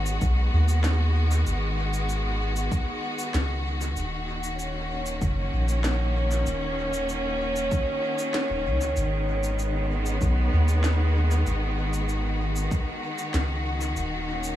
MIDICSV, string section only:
0, 0, Header, 1, 2, 480
1, 0, Start_track
1, 0, Key_signature, 5, "minor"
1, 0, Tempo, 625000
1, 1126, Time_signature, 4, 2, 24, 8
1, 11182, End_track
2, 0, Start_track
2, 0, Title_t, "String section"
2, 0, Program_c, 0, 48
2, 0, Note_on_c, 0, 51, 61
2, 0, Note_on_c, 0, 56, 77
2, 0, Note_on_c, 0, 59, 71
2, 0, Note_on_c, 0, 61, 81
2, 0, Note_on_c, 0, 66, 78
2, 309, Note_off_c, 0, 61, 0
2, 3036, Note_off_c, 0, 51, 0
2, 3045, Note_on_c, 0, 51, 86
2, 3046, Note_off_c, 0, 56, 0
2, 3047, Note_off_c, 0, 59, 0
2, 3169, Note_on_c, 0, 58, 73
2, 3488, Note_on_c, 0, 61, 93
2, 6885, Note_off_c, 0, 66, 0
2, 6886, Note_off_c, 0, 58, 0
2, 6948, Note_on_c, 0, 56, 79
2, 7037, Note_on_c, 0, 59, 94
2, 7650, Note_on_c, 0, 66, 88
2, 8421, Note_off_c, 0, 61, 0
2, 10724, Note_off_c, 0, 56, 0
2, 10727, Note_off_c, 0, 59, 0
2, 10846, Note_on_c, 0, 58, 77
2, 11027, Note_on_c, 0, 61, 79
2, 11182, Note_off_c, 0, 51, 0
2, 11182, Note_off_c, 0, 58, 0
2, 11182, Note_off_c, 0, 61, 0
2, 11182, Note_off_c, 0, 66, 0
2, 11182, End_track
0, 0, End_of_file